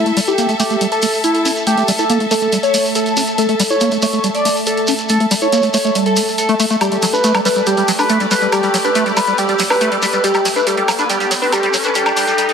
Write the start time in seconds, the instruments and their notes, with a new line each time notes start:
Already playing: synth drone A3 A4, analog synth lead E4, string section A4 E5 A5
0.06 acid bass A3, closed hi-hat, shekere
0.17 acid bass G3, open hi-hat, shekere
0.27 acid bass E4, analog synth lead G4, closed hi-hat, shekere
0.38 acid bass A#3, closed hi-hat, shekere
0.49 acid bass A3, closed hi-hat, shekere
0.60 acid bass A3, analog synth lead G4, open hi-hat, shekere
0.70 acid bass A3, closed hi-hat, shekere
0.81 acid bass G3, closed hi-hat, shekere
0.92 analog synth lead A4, closed hi-hat, shekere
1.02 acid bass A3, open hi-hat, shekere
1.13 shekere
1.24 analog synth lead E4, closed hi-hat, shekere
1.34 closed hi-hat, shekere
1.45 acid bass C#4, open hi-hat, shekere
1.56 closed hi-hat, shekere
1.67 acid bass A3, analog synth lead G4, closed hi-hat, shekere
1.77 acid bass A3, closed hi-hat, shekere
1.88 acid bass G3, open hi-hat, shekere
1.99 acid bass E4, analog synth lead A4, closed hi-hat, shekere
2.10 acid bass A#3, closed hi-hat, shekere
2.20 acid bass A3, closed hi-hat, shekere
2.31 acid bass A3, analog synth lead A4, open hi-hat, shekere
2.42 acid bass A3, closed hi-hat, shekere
2.52 acid bass G3, closed hi-hat, shekere
2.63 analog synth lead C#5, closed hi-hat, shekere
2.74 acid bass A3, open hi-hat, shekere
2.85 shekere
2.95 analog synth lead A4, closed hi-hat, shekere
3.06 closed hi-hat, shekere
3.17 acid bass C#4, open hi-hat, shekere
3.27 closed hi-hat, shekere
3.38 acid bass A3, analog synth lead A4, closed hi-hat, shekere
3.49 acid bass A3, closed hi-hat, shekere
3.60 acid bass G3, open hi-hat, shekere
3.70 acid bass E4, analog synth lead C#5, closed hi-hat, shekere
3.81 acid bass A#3, closed hi-hat, shekere
3.92 acid bass A3, closed hi-hat, shekere
4.02 acid bass A3, analog synth lead C#5, open hi-hat, shekere
4.13 acid bass A3, closed hi-hat, shekere
4.24 acid bass G3, closed hi-hat, shekere
4.35 analog synth lead D5, closed hi-hat, shekere
4.45 acid bass A3, open hi-hat, shekere
4.56 shekere
4.66 analog synth lead A4, closed hi-hat, shekere
4.77 closed hi-hat, shekere
4.87 acid bass C#4, open hi-hat, shekere
4.99 closed hi-hat, shekere
5.09 acid bass A3, analog synth lead A4, closed hi-hat, shekere
5.20 acid bass A3, closed hi-hat, shekere
5.31 acid bass G3, open hi-hat, shekere
5.42 acid bass E4, analog synth lead C#5, closed hi-hat, shekere
5.52 acid bass A#3, closed hi-hat, shekere
5.62 acid bass A3, closed hi-hat, shekere
5.74 acid bass A3, analog synth lead C#5, open hi-hat, shekere
5.84 acid bass A3, closed hi-hat, shekere
5.95 acid bass G3, closed hi-hat, shekere
6.06 analog synth lead A4, closed hi-hat, shekere
6.16 acid bass A3, open hi-hat, shekere
6.27 shekere
6.38 analog synth lead A4, closed hi-hat, shekere
6.49 acid bass A3, closed hi-hat, shekere
6.60 acid bass A3, open hi-hat, shekere
6.70 acid bass A3, closed hi-hat, shekere
6.81 acid bass G3, string section G4, analog synth lead G4, closed hi-hat, riser, high woodblock, shekere
6.92 acid bass G3, closed hi-hat, shekere
7.02 acid bass F#3, open hi-hat, shekere
7.13 acid bass D4, analog synth lead B4, closed hi-hat, shekere
7.18 string section D5
7.24 acid bass A3, closed hi-hat, shekere
7.35 acid bass G3, closed hi-hat, high woodblock, shekere
7.45 acid bass G3, analog synth lead B4, open hi-hat, shekere
7.56 acid bass G3, closed hi-hat, shekere
7.66 acid bass G3, analog synth lead G4, closed hi-hat, shekere
7.77 acid bass G3, closed hi-hat, shekere
7.88 acid bass F#3, open hi-hat, shekere
7.99 acid bass D4, analog synth lead B4, high woodblock, shekere
8.09 acid bass A3, closed hi-hat, shekere
8.20 acid bass G3, closed hi-hat, shekere
8.31 acid bass G3, analog synth lead B4, open hi-hat, shekere
8.42 acid bass G3, closed hi-hat, shekere
8.52 acid bass G3, analog synth lead G4, closed hi-hat, high woodblock, shekere
8.63 acid bass G3, closed hi-hat, shekere
8.74 acid bass F#3, open hi-hat, shekere
8.85 acid bass D4, analog synth lead B4, closed hi-hat, shekere
8.95 acid bass A3, closed hi-hat, shekere
9.06 acid bass G3, closed hi-hat, shekere
9.17 acid bass G3, analog synth lead B4, open hi-hat, high woodblock, shekere
9.27 acid bass G3, closed hi-hat, shekere
9.38 acid bass G3, analog synth lead G4, closed hi-hat, shekere
9.48 acid bass G3, closed hi-hat, shekere
9.59 acid bass F#3, open hi-hat, shekere
9.70 acid bass D4, analog synth lead B4, high woodblock, shekere
9.81 acid bass A3, closed hi-hat, shekere
9.92 acid bass G3, closed hi-hat, shekere
10.02 acid bass G3, analog synth lead B4, open hi-hat, shekere
10.13 acid bass G3, closed hi-hat, shekere
10.24 acid bass G3, analog synth lead G4, closed hi-hat, shekere
10.34 acid bass G3, closed hi-hat, high woodblock, shekere
10.45 acid bass F#3, open hi-hat, shekere
10.56 acid bass D4, analog synth lead B4, closed hi-hat, shekere
10.67 acid bass G3, analog synth lead G4, closed hi-hat, shekere
10.77 acid bass G3, closed hi-hat, shekere
10.88 acid bass F#3, open hi-hat, high woodblock, shekere
10.98 acid bass D4, analog synth lead B4, closed hi-hat, shekere
11.10 acid bass G3, analog synth lead G4, closed hi-hat, shekere
11.20 acid bass G3, closed hi-hat, shekere
11.31 acid bass F#3, open hi-hat, shekere
11.42 acid bass D4, analog synth lead B4, shekere
11.52 acid bass G3, analog synth lead G4, closed hi-hat, high woodblock, shekere
11.63 acid bass G3, closed hi-hat, shekere
11.73 acid bass F#3, open hi-hat, shekere
11.84 acid bass D4, analog synth lead B4, closed hi-hat, shekere
11.95 acid bass G3, analog synth lead G4, closed hi-hat, shekere
12.06 acid bass G3, closed hi-hat, high woodblock, shekere
12.17 acid bass G3, analog synth lead G4, open hi-hat, shekere
12.27 acid bass G3, closed hi-hat, shekere
12.38 acid bass G3, analog synth lead G4, closed hi-hat, shekere
12.49 acid bass G3, closed hi-hat, shekere